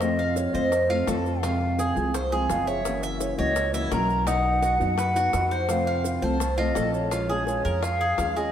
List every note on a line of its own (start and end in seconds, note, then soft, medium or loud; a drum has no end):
0.00 0.49 F2 medium
0.00 0.54 C3 medium
0.00 0.54 F3 medium
0.00 0.53 A3 medium
0.00 0.54 C4 medium
0.00 0.53 F4 medium
0.00 0.18 C5 medium
0.00 0.38 D#5 medium
0.00 high bongo medium
0.00 maracas medium
0.19 0.53 F5 medium
0.36 0.56 C#5 medium
0.36 high bongo medium
0.36 maracas medium
0.53 1.04 F2 medium
0.53 0.71 F3 medium
0.53 0.71 A3 medium
0.53 0.71 C4 medium
0.53 0.71 F4 medium
0.53 0.89 C5 medium
0.53 0.90 D#5 medium
0.53 high bongo soft
0.53 maracas soft
0.72 muted nylon-string guitar stroke medium
0.72 high bongo medium
0.72 maracas medium
0.89 1.06 F3 soft
0.89 1.06 A3 medium
0.89 1.07 C4 medium
0.89 1.07 F4 medium
0.89 high bongo soft
1.07 1.91 F2 medium
1.07 1.42 F3 soft
1.07 1.42 A3 medium
1.07 1.43 C4 medium
1.07 1.43 F4 medium
1.07 1.42 A4 medium
1.07 1.44 A5 medium
1.07 high bongo medium
1.07 low bongo medium
1.07 maracas medium
1.25 high bongo soft
1.25 maracas soft
1.42 1.95 C3 medium
1.42 1.96 F3 medium
1.42 1.96 G#3 medium
1.42 1.95 C4 medium
1.42 1.78 F4 medium
1.42 1.95 F4 medium
1.42 1.96 F5 medium
1.42 high bongo medium
1.42 maracas medium
1.61 high bongo soft
1.79 2.13 G#4 medium
1.79 high bongo medium
1.79 maracas medium
1.96 2.46 C2 medium
1.96 2.13 F3 medium
1.96 2.13 G#3 medium
1.96 2.13 C4 medium
1.96 2.13 F4 medium
1.96 high bongo soft
1.96 maracas soft
2.14 2.32 C5 medium
2.14 muted nylon-string guitar stroke medium
2.14 high bongo medium
2.14 maracas medium
2.32 2.49 F3 medium
2.32 2.49 G#3 medium
2.32 2.49 C4 medium
2.32 2.49 F4 medium
2.32 2.67 G#4 medium
2.49 3.32 F#1 medium
2.49 2.85 F3 soft
2.49 2.85 G#3 medium
2.49 2.85 C4 soft
2.49 2.85 F4 soft
2.49 2.68 F5 medium
2.49 high bongo medium
2.49 low bongo medium
2.49 maracas medium
2.67 3.02 C#5 medium
2.67 3.20 E5 medium
2.67 high bongo soft
2.67 maracas soft
2.85 3.38 C#3 medium
2.85 3.38 E3 medium
2.85 3.38 A#3 medium
2.85 3.37 C#4 medium
2.85 3.37 F#4 medium
2.85 high bongo medium
2.85 maracas medium
3.03 3.38 E5 medium
3.03 maracas medium
3.20 3.37 C#5 medium
3.20 high bongo medium
3.20 maracas medium
3.38 3.88 C#2 medium
3.38 3.55 E3 medium
3.38 3.55 A#3 medium
3.38 3.55 C#4 medium
3.38 3.55 F#4 medium
3.38 3.73 C#5 medium
3.38 3.71 D#5 loud
3.38 high bongo soft
3.38 maracas soft
3.56 muted nylon-string guitar stroke medium
3.56 high bongo medium
3.56 maracas medium
3.73 3.90 E3 medium
3.73 3.91 A#3 medium
3.73 3.91 C#4 medium
3.73 3.91 E4 medium
3.73 3.91 F#4 medium
3.73 high bongo soft
3.73 maracas medium
3.91 4.75 B1 medium
3.91 4.26 E3 medium
3.91 4.27 A#3 medium
3.91 4.27 C#4 medium
3.91 4.27 F#4 medium
3.91 4.26 A#4 medium
3.91 4.28 A#5 loud
3.91 high bongo medium
3.91 low bongo medium
3.91 maracas medium
4.09 high bongo soft
4.09 maracas soft
4.27 4.80 B2 medium
4.27 4.80 F#3 medium
4.27 4.80 B3 medium
4.27 4.62 D#4 medium
4.27 4.79 D#4 medium
4.27 4.79 F#4 medium
4.27 4.80 F#5 loud
4.27 high bongo medium
4.27 maracas medium
4.45 high bongo soft
4.62 4.97 F#4 medium
4.62 high bongo medium
4.62 maracas medium
4.80 5.30 F#2 loud
4.80 4.97 F#3 medium
4.80 4.97 B3 medium
4.80 4.97 D#4 medium
4.80 4.97 F#4 medium
4.80 5.31 F#5 loud
4.80 high bongo soft
4.80 maracas soft
4.98 5.16 B4 medium
4.98 muted nylon-string guitar stroke medium
4.98 high bongo medium
4.98 maracas medium
5.15 5.34 F#3 medium
5.15 5.32 B3 medium
5.15 5.33 D#4 medium
5.15 5.33 F#4 medium
5.15 5.51 F#4 medium
5.15 maracas medium
5.33 6.17 F2 medium
5.33 5.69 B3 medium
5.33 5.69 D#4 medium
5.33 5.69 F#4 medium
5.33 5.72 F#5 medium
5.33 high bongo medium
5.33 low bongo medium
5.33 maracas medium
5.51 5.86 C5 medium
5.51 high bongo soft
5.51 maracas soft
5.69 6.22 C3 medium
5.69 6.22 F3 medium
5.69 6.22 A3 medium
5.69 6.21 C4 medium
5.69 6.21 F4 medium
5.69 6.06 F5 medium
5.69 high bongo medium
5.69 maracas medium
5.87 6.22 F5 medium
6.04 6.25 F5 medium
6.04 high bongo medium
6.04 maracas medium
6.22 6.72 C2 medium
6.22 6.39 F3 medium
6.22 6.40 A3 medium
6.22 6.40 C4 medium
6.22 6.40 F4 medium
6.22 6.57 C5 medium
6.22 6.57 A5 medium
6.22 high bongo soft
6.22 maracas soft
6.40 muted nylon-string guitar stroke medium
6.40 high bongo medium
6.40 maracas medium
6.58 6.74 F3 medium
6.58 6.75 A3 medium
6.58 6.75 C4 medium
6.58 6.75 F4 medium
6.58 6.91 D#5 medium
6.58 high bongo soft
6.75 7.60 A#1 medium
6.75 7.10 F3 medium
6.75 7.11 A3 medium
6.75 7.11 C4 medium
6.75 7.12 F4 medium
6.75 7.11 A4 medium
6.75 high bongo medium
6.75 low bongo medium
6.75 maracas medium
6.93 7.44 C#5 medium
6.93 high bongo soft
6.93 maracas soft
7.11 7.29 F3 medium
7.11 7.29 G#3 medium
7.11 7.28 C#4 medium
7.11 7.29 F4 medium
7.11 7.28 F4 medium
7.11 high bongo medium
7.11 maracas medium
7.29 7.46 G#3 medium
7.29 7.46 C#4 medium
7.29 7.46 F4 medium
7.29 7.64 G#4 medium
7.29 high bongo soft
7.47 7.82 F3 soft
7.47 7.82 G#3 medium
7.47 7.82 C#4 soft
7.47 7.83 F4 medium
7.47 7.85 C#5 medium
7.47 high bongo medium
7.47 maracas medium
7.65 8.15 F2 medium
7.65 7.82 A#4 medium
7.65 high bongo soft
7.65 maracas soft
7.83 8.00 F4 medium
7.83 8.29 F5 loud
7.83 muted nylon-string guitar stroke medium
7.83 high bongo medium
7.83 maracas medium
8.01 8.18 G#4 medium
8.18 8.52 D#2 medium
8.18 8.36 F3 soft
8.18 8.36 G#3 medium
8.18 8.36 C#4 medium
8.18 8.34 F4 medium
8.18 8.36 F5 medium
8.18 high bongo medium
8.18 low bongo medium
8.18 maracas medium
8.29 8.38 F5 medium
8.36 8.52 G#3 medium
8.36 8.52 C#4 medium
8.36 8.52 F4 medium
8.36 8.52 G#4 medium
8.36 8.52 D#5 medium
8.36 high bongo soft
8.36 maracas soft